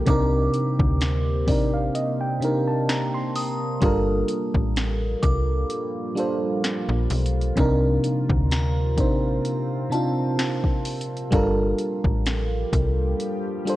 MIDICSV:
0, 0, Header, 1, 6, 480
1, 0, Start_track
1, 0, Tempo, 937500
1, 37, Time_signature, 4, 2, 24, 8
1, 7045, End_track
2, 0, Start_track
2, 0, Title_t, "Synth bell"
2, 0, Program_c, 0, 98
2, 39, Note_on_c, 0, 86, 65
2, 1084, Note_off_c, 0, 86, 0
2, 1719, Note_on_c, 0, 87, 74
2, 2177, Note_off_c, 0, 87, 0
2, 2674, Note_on_c, 0, 86, 54
2, 3722, Note_off_c, 0, 86, 0
2, 4359, Note_on_c, 0, 82, 64
2, 5078, Note_on_c, 0, 81, 67
2, 5404, Note_off_c, 0, 82, 0
2, 6017, Note_off_c, 0, 81, 0
2, 7045, End_track
3, 0, Start_track
3, 0, Title_t, "FM electric piano"
3, 0, Program_c, 1, 5
3, 0, Control_c, 1, 64, 127
3, 29, Note_on_c, 1, 48, 108
3, 35, Note_on_c, 1, 60, 97
3, 41, Note_on_c, 1, 62, 94
3, 44, Control_c, 1, 64, 0
3, 46, Note_on_c, 1, 63, 99
3, 52, Note_on_c, 1, 70, 119
3, 134, Control_c, 1, 64, 127
3, 602, Note_off_c, 1, 48, 0
3, 605, Note_off_c, 1, 60, 0
3, 608, Note_off_c, 1, 62, 0
3, 611, Note_off_c, 1, 63, 0
3, 613, Note_off_c, 1, 70, 0
3, 749, Note_on_c, 1, 48, 82
3, 755, Note_on_c, 1, 60, 72
3, 761, Note_on_c, 1, 62, 71
3, 761, Note_on_c, 1, 74, 70
3, 767, Note_on_c, 1, 63, 68
3, 772, Note_on_c, 1, 70, 87
3, 879, Note_off_c, 1, 74, 0
3, 889, Note_on_c, 1, 77, 68
3, 991, Note_off_c, 1, 77, 0
3, 999, Note_on_c, 1, 75, 74
3, 1118, Note_off_c, 1, 75, 0
3, 1130, Note_on_c, 1, 79, 73
3, 1136, Note_off_c, 1, 48, 0
3, 1139, Note_off_c, 1, 60, 0
3, 1142, Note_off_c, 1, 62, 0
3, 1145, Note_off_c, 1, 63, 0
3, 1148, Note_off_c, 1, 70, 0
3, 1230, Note_on_c, 1, 48, 82
3, 1236, Note_on_c, 1, 60, 78
3, 1242, Note_on_c, 1, 62, 79
3, 1247, Note_on_c, 1, 63, 79
3, 1252, Note_on_c, 1, 70, 91
3, 1351, Note_off_c, 1, 79, 0
3, 1370, Note_on_c, 1, 81, 67
3, 1471, Note_off_c, 1, 81, 0
3, 1480, Note_on_c, 1, 82, 73
3, 1599, Note_off_c, 1, 82, 0
3, 1609, Note_on_c, 1, 84, 73
3, 1803, Note_off_c, 1, 48, 0
3, 1806, Note_off_c, 1, 60, 0
3, 1809, Note_off_c, 1, 62, 0
3, 1811, Note_off_c, 1, 63, 0
3, 1814, Note_off_c, 1, 70, 0
3, 1938, Note_off_c, 1, 84, 0
3, 1949, Note_on_c, 1, 55, 104
3, 1955, Note_on_c, 1, 62, 98
3, 1960, Note_on_c, 1, 65, 100
3, 1964, Control_c, 1, 64, 0
3, 1966, Note_on_c, 1, 69, 97
3, 1972, Note_on_c, 1, 70, 115
3, 2058, Control_c, 1, 64, 127
3, 2705, Note_off_c, 1, 55, 0
3, 2708, Note_off_c, 1, 62, 0
3, 2711, Note_off_c, 1, 65, 0
3, 2714, Note_off_c, 1, 69, 0
3, 2717, Note_off_c, 1, 70, 0
3, 3149, Note_on_c, 1, 55, 87
3, 3154, Note_on_c, 1, 62, 82
3, 3160, Note_on_c, 1, 65, 80
3, 3166, Note_on_c, 1, 69, 78
3, 3172, Note_on_c, 1, 72, 90
3, 3722, Note_off_c, 1, 55, 0
3, 3725, Note_off_c, 1, 62, 0
3, 3728, Note_off_c, 1, 65, 0
3, 3731, Note_off_c, 1, 69, 0
3, 3734, Note_off_c, 1, 72, 0
3, 3869, Note_on_c, 1, 48, 105
3, 3876, Note_on_c, 1, 60, 94
3, 3880, Note_on_c, 1, 62, 99
3, 3884, Control_c, 1, 64, 0
3, 3886, Note_on_c, 1, 63, 97
3, 3892, Note_on_c, 1, 70, 117
3, 3985, Control_c, 1, 64, 127
3, 4442, Note_off_c, 1, 48, 0
3, 4446, Note_off_c, 1, 60, 0
3, 4448, Note_off_c, 1, 62, 0
3, 4451, Note_off_c, 1, 63, 0
3, 4454, Note_off_c, 1, 70, 0
3, 4588, Note_on_c, 1, 48, 74
3, 4593, Note_on_c, 1, 60, 69
3, 4599, Note_on_c, 1, 62, 72
3, 4604, Note_on_c, 1, 63, 76
3, 4610, Note_on_c, 1, 72, 90
3, 4976, Note_off_c, 1, 48, 0
3, 4978, Note_off_c, 1, 60, 0
3, 4982, Note_off_c, 1, 62, 0
3, 4984, Note_off_c, 1, 63, 0
3, 4987, Note_off_c, 1, 72, 0
3, 5067, Note_on_c, 1, 48, 83
3, 5074, Note_on_c, 1, 60, 82
3, 5080, Note_on_c, 1, 62, 81
3, 5085, Note_on_c, 1, 63, 76
3, 5091, Note_on_c, 1, 65, 99
3, 5641, Note_off_c, 1, 48, 0
3, 5645, Note_off_c, 1, 60, 0
3, 5648, Note_off_c, 1, 62, 0
3, 5650, Note_off_c, 1, 63, 0
3, 5653, Note_off_c, 1, 65, 0
3, 5789, Note_on_c, 1, 55, 109
3, 5795, Note_on_c, 1, 62, 100
3, 5801, Note_on_c, 1, 65, 101
3, 5803, Control_c, 1, 64, 0
3, 5806, Note_on_c, 1, 69, 101
3, 5813, Note_on_c, 1, 70, 111
3, 5883, Control_c, 1, 64, 127
3, 6546, Note_off_c, 1, 55, 0
3, 6549, Note_off_c, 1, 62, 0
3, 6552, Note_off_c, 1, 65, 0
3, 6554, Note_off_c, 1, 69, 0
3, 6558, Note_off_c, 1, 70, 0
3, 6990, Note_on_c, 1, 55, 88
3, 6995, Note_on_c, 1, 62, 82
3, 7000, Note_on_c, 1, 65, 80
3, 7007, Note_on_c, 1, 69, 80
3, 7013, Note_on_c, 1, 72, 99
3, 7045, Note_off_c, 1, 55, 0
3, 7045, Note_off_c, 1, 62, 0
3, 7045, Note_off_c, 1, 65, 0
3, 7045, Note_off_c, 1, 69, 0
3, 7045, Note_off_c, 1, 72, 0
3, 7045, End_track
4, 0, Start_track
4, 0, Title_t, "Ambient pad"
4, 0, Program_c, 2, 92
4, 0, Note_on_c, 2, 58, 69
4, 0, Note_on_c, 2, 60, 75
4, 0, Note_on_c, 2, 67, 83
4, 37, Note_on_c, 2, 48, 76
4, 1937, Note_off_c, 2, 60, 0
4, 1938, Note_off_c, 2, 48, 0
4, 1955, Note_on_c, 2, 55, 71
4, 1955, Note_on_c, 2, 65, 73
4, 1957, Note_on_c, 2, 53, 78
4, 3857, Note_off_c, 2, 55, 0
4, 3858, Note_off_c, 2, 53, 0
4, 3875, Note_on_c, 2, 48, 83
4, 3875, Note_on_c, 2, 60, 72
4, 5777, Note_off_c, 2, 48, 0
4, 5777, Note_off_c, 2, 60, 0
4, 5777, Note_off_c, 2, 67, 0
4, 5795, Note_on_c, 2, 53, 81
4, 5795, Note_on_c, 2, 55, 69
4, 5797, Note_on_c, 2, 67, 83
4, 7045, Note_off_c, 2, 53, 0
4, 7045, Note_off_c, 2, 55, 0
4, 7045, Note_off_c, 2, 58, 0
4, 7045, Note_off_c, 2, 65, 0
4, 7045, Note_off_c, 2, 67, 0
4, 7045, End_track
5, 0, Start_track
5, 0, Title_t, "FM bass"
5, 0, Program_c, 3, 39
5, 36, Note_on_c, 3, 36, 110
5, 250, Note_off_c, 3, 36, 0
5, 406, Note_on_c, 3, 38, 91
5, 758, Note_on_c, 3, 33, 103
5, 766, Note_off_c, 3, 38, 0
5, 971, Note_off_c, 3, 33, 0
5, 1956, Note_on_c, 3, 31, 110
5, 2170, Note_off_c, 3, 31, 0
5, 2326, Note_on_c, 3, 33, 91
5, 2639, Note_off_c, 3, 33, 0
5, 2678, Note_on_c, 3, 36, 98
5, 2891, Note_off_c, 3, 36, 0
5, 3527, Note_on_c, 3, 34, 97
5, 3625, Note_off_c, 3, 34, 0
5, 3637, Note_on_c, 3, 35, 100
5, 3851, Note_off_c, 3, 35, 0
5, 3877, Note_on_c, 3, 36, 110
5, 4091, Note_off_c, 3, 36, 0
5, 4247, Note_on_c, 3, 38, 94
5, 4598, Note_on_c, 3, 33, 101
5, 4605, Note_off_c, 3, 38, 0
5, 4811, Note_off_c, 3, 33, 0
5, 5797, Note_on_c, 3, 31, 104
5, 6011, Note_off_c, 3, 31, 0
5, 6167, Note_on_c, 3, 33, 86
5, 6479, Note_off_c, 3, 33, 0
5, 6517, Note_on_c, 3, 36, 96
5, 6731, Note_off_c, 3, 36, 0
5, 7045, End_track
6, 0, Start_track
6, 0, Title_t, "Drums"
6, 33, Note_on_c, 9, 42, 73
6, 36, Note_on_c, 9, 36, 124
6, 84, Note_off_c, 9, 42, 0
6, 87, Note_off_c, 9, 36, 0
6, 274, Note_on_c, 9, 42, 69
6, 325, Note_off_c, 9, 42, 0
6, 406, Note_on_c, 9, 36, 107
6, 458, Note_off_c, 9, 36, 0
6, 517, Note_on_c, 9, 42, 77
6, 520, Note_on_c, 9, 38, 125
6, 568, Note_off_c, 9, 42, 0
6, 572, Note_off_c, 9, 38, 0
6, 757, Note_on_c, 9, 36, 107
6, 757, Note_on_c, 9, 46, 62
6, 808, Note_off_c, 9, 36, 0
6, 808, Note_off_c, 9, 46, 0
6, 999, Note_on_c, 9, 42, 76
6, 1050, Note_off_c, 9, 42, 0
6, 1241, Note_on_c, 9, 42, 65
6, 1292, Note_off_c, 9, 42, 0
6, 1481, Note_on_c, 9, 38, 108
6, 1481, Note_on_c, 9, 42, 76
6, 1532, Note_off_c, 9, 38, 0
6, 1533, Note_off_c, 9, 42, 0
6, 1717, Note_on_c, 9, 46, 79
6, 1768, Note_off_c, 9, 46, 0
6, 1954, Note_on_c, 9, 42, 77
6, 1956, Note_on_c, 9, 36, 119
6, 2005, Note_off_c, 9, 42, 0
6, 2008, Note_off_c, 9, 36, 0
6, 2193, Note_on_c, 9, 42, 70
6, 2244, Note_off_c, 9, 42, 0
6, 2326, Note_on_c, 9, 36, 114
6, 2377, Note_off_c, 9, 36, 0
6, 2438, Note_on_c, 9, 42, 72
6, 2441, Note_on_c, 9, 38, 122
6, 2489, Note_off_c, 9, 42, 0
6, 2493, Note_off_c, 9, 38, 0
6, 2676, Note_on_c, 9, 36, 106
6, 2676, Note_on_c, 9, 42, 79
6, 2727, Note_off_c, 9, 36, 0
6, 2727, Note_off_c, 9, 42, 0
6, 2918, Note_on_c, 9, 42, 77
6, 2969, Note_off_c, 9, 42, 0
6, 3160, Note_on_c, 9, 42, 68
6, 3211, Note_off_c, 9, 42, 0
6, 3400, Note_on_c, 9, 38, 108
6, 3401, Note_on_c, 9, 42, 76
6, 3451, Note_off_c, 9, 38, 0
6, 3452, Note_off_c, 9, 42, 0
6, 3636, Note_on_c, 9, 42, 78
6, 3636, Note_on_c, 9, 46, 80
6, 3687, Note_off_c, 9, 42, 0
6, 3687, Note_off_c, 9, 46, 0
6, 3716, Note_on_c, 9, 42, 61
6, 3768, Note_off_c, 9, 42, 0
6, 3796, Note_on_c, 9, 42, 46
6, 3847, Note_off_c, 9, 42, 0
6, 3874, Note_on_c, 9, 42, 73
6, 3876, Note_on_c, 9, 36, 120
6, 3926, Note_off_c, 9, 42, 0
6, 3928, Note_off_c, 9, 36, 0
6, 4116, Note_on_c, 9, 42, 67
6, 4167, Note_off_c, 9, 42, 0
6, 4246, Note_on_c, 9, 36, 109
6, 4298, Note_off_c, 9, 36, 0
6, 4359, Note_on_c, 9, 42, 71
6, 4363, Note_on_c, 9, 38, 122
6, 4410, Note_off_c, 9, 42, 0
6, 4414, Note_off_c, 9, 38, 0
6, 4596, Note_on_c, 9, 36, 105
6, 4596, Note_on_c, 9, 42, 88
6, 4647, Note_off_c, 9, 42, 0
6, 4648, Note_off_c, 9, 36, 0
6, 4838, Note_on_c, 9, 42, 75
6, 4889, Note_off_c, 9, 42, 0
6, 5080, Note_on_c, 9, 42, 67
6, 5132, Note_off_c, 9, 42, 0
6, 5320, Note_on_c, 9, 38, 103
6, 5320, Note_on_c, 9, 42, 78
6, 5371, Note_off_c, 9, 38, 0
6, 5371, Note_off_c, 9, 42, 0
6, 5447, Note_on_c, 9, 36, 89
6, 5498, Note_off_c, 9, 36, 0
6, 5555, Note_on_c, 9, 42, 80
6, 5555, Note_on_c, 9, 46, 80
6, 5607, Note_off_c, 9, 42, 0
6, 5607, Note_off_c, 9, 46, 0
6, 5637, Note_on_c, 9, 42, 61
6, 5689, Note_off_c, 9, 42, 0
6, 5718, Note_on_c, 9, 42, 46
6, 5769, Note_off_c, 9, 42, 0
6, 5796, Note_on_c, 9, 42, 76
6, 5797, Note_on_c, 9, 36, 114
6, 5847, Note_off_c, 9, 42, 0
6, 5848, Note_off_c, 9, 36, 0
6, 6034, Note_on_c, 9, 42, 68
6, 6086, Note_off_c, 9, 42, 0
6, 6166, Note_on_c, 9, 36, 112
6, 6218, Note_off_c, 9, 36, 0
6, 6277, Note_on_c, 9, 42, 73
6, 6280, Note_on_c, 9, 38, 127
6, 6328, Note_off_c, 9, 42, 0
6, 6332, Note_off_c, 9, 38, 0
6, 6517, Note_on_c, 9, 36, 107
6, 6518, Note_on_c, 9, 42, 89
6, 6568, Note_off_c, 9, 36, 0
6, 6570, Note_off_c, 9, 42, 0
6, 6757, Note_on_c, 9, 42, 75
6, 6809, Note_off_c, 9, 42, 0
6, 7001, Note_on_c, 9, 42, 68
6, 7045, Note_off_c, 9, 42, 0
6, 7045, End_track
0, 0, End_of_file